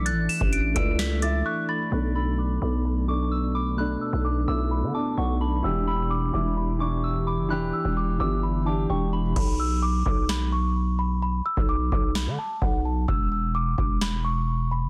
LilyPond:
<<
  \new Staff \with { instrumentName = "Celesta" } { \time 4/4 \key b \minor \tempo 4 = 129 a'''8 e''''8 d''''8 d''''8 b'''8 a'''8 fis'''8 a'''8 | b''8 e'''8 d'''8 d'''8 b''8 cis'''4 b''8 | b''8 e'''8 d'''8 d'''8 b''8 a''8 fis''8 a''8 | e'''8 e'''8 d'''8 d'''8 b''8 cis'''4 b''8 |
b''8 e'''8 d'''8 d'''8 b''8 a''8 g''8 b''8 | b''8 e'''8 d'''8 d'''8 b''8 cis'''4 b''8 | b''8 e'''8 d'''8 d'''8 b''8 a''8 fis''8 a''8 | e'''8 e'''8 d'''8 d'''8 b''8 cis'''4 b''8 | }
  \new Staff \with { instrumentName = "Synth bell" } { \time 4/4 \key b \minor fis'''4. e'''4 d'''8 cis'''8 b''8 | r8 b''2 d'''8 e'''8 d'''8 | fis'''4. e'''4 d'''8 cis'''8 b''8 | r8 b''2 d'''8 e'''8 d'''8 |
fis'''4. e'''4 d'''8 cis'''8 b''8 | r1 | r1 | r1 | }
  \new Staff \with { instrumentName = "Grand piano" } { \time 4/4 \key b \minor r4. <a e' d''>4 <a e' e''>4 r8 | <b, a d'>4 r8 <b, a b>4 <b, a d'>4 r8 | <b, a d'>4 r8 <b, a e'>4 <b, a d'>4 r8 | <e d' g'>4 r8 <e d' e'>4 <e d' e'>4 r8 |
<e d' g'>4 r8 <e d' g'>4 <e d' g'>4 r8 | r1 | r1 | r1 | }
  \new Staff \with { instrumentName = "Ambient pad" } { \time 4/4 \key b \minor << { <e a d'>1 | <a d'>1~ | <a d'>1 | <e g'>1~ |
<e g'>1 | r1 | r1 | r1 | } \\ { r1 | b1~ | b1~ | b1~ |
b1 | r1 | r1 | r1 | } >> }
  \new Staff \with { instrumentName = "808-style bass" } { \clef bass \time 4/4 \key b \minor b,,32 a,,16. r16 a,,8. cis,4. r4 | b,,4. b,,2~ b,,8~ | b,,8 r16 b,,8. b,,8. d16 r8 b,,4 | e,,4. e,,2~ e,,16 fis,,16~ |
fis,,32 e,,16. r16 e,,8. g,,4. e,,4 | b,,4. b,,2~ b,,8~ | b,,8 r16 b,,8. b,,8. d16 r8 b,,4 | e,,4. e,,2~ e,,16 fis,,16 | }
  \new DrumStaff \with { instrumentName = "Drums" } \drummode { \time 4/4 hh8 hho16 bd16 hh8 <hh bd>8 <hh sn>8 hh8 r4 | r4 r4 r4 r4 | r4 r4 r4 r4 | r4 r4 r4 r4 |
r4 r4 r4 r4 | <cymc bd>4 r8 bd8 sn4 r4 | r8. bd16 r8 bd8 sn4 bd4 | bd4 r8 bd8 sn4 r4 | }
>>